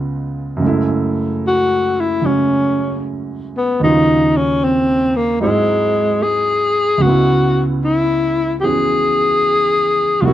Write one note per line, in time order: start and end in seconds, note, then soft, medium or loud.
0.00 0.59 C#2 soft
0.00 0.58 C#3 soft
0.00 0.61 G#3 soft
0.00 0.64 B3 soft
0.00 0.65 F4 medium
0.57 3.78 F#2 medium
0.57 2.20 C#3 soft
0.62 2.23 G#3 soft
0.62 3.83 A3 soft
0.67 3.84 E4 medium
1.47 2.02 F#4 medium
2.00 2.27 E4 medium
2.22 3.81 C#3 soft
2.22 3.81 F#3 soft
2.22 3.82 G#3 soft
2.22 3.82 C#4 soft
2.26 3.03 C#4 medium
3.57 3.81 B3 medium
3.80 5.41 D#2 soft
3.80 5.41 D#3 soft
3.80 5.40 F#3 soft
3.80 4.38 D#4 medium
3.84 5.43 C#3 soft
3.84 5.43 F4 soft
4.37 4.65 C#4 medium
4.64 5.17 C4 medium
5.16 5.41 A#3 medium
5.40 7.02 G#2 soft
5.40 7.02 F#3 soft
5.40 6.24 G#3 medium
5.40 7.03 C4 soft
5.40 7.02 D#4 soft
5.40 7.03 E4 soft
6.23 7.03 G#4 medium
6.98 10.21 C#2 soft
6.98 10.22 C#3 soft
7.02 10.24 G#3 soft
7.02 7.64 F#4 loud
7.06 8.62 B3 soft
7.06 10.26 E4 medium
7.84 8.55 E4 medium
8.61 10.23 E3 soft
8.61 10.24 B3 soft
8.61 8.65 G4 medium
8.61 10.22 G#4 loud
8.65 10.24 C#4 soft
8.65 10.25 F#4 soft
10.21 10.33 C2 medium
10.21 10.33 C3 medium
10.21 10.33 F#3 soft
10.21 10.26 F4 medium
10.21 10.33 F#4 medium
10.26 10.33 A#3 soft
10.26 10.33 E4 medium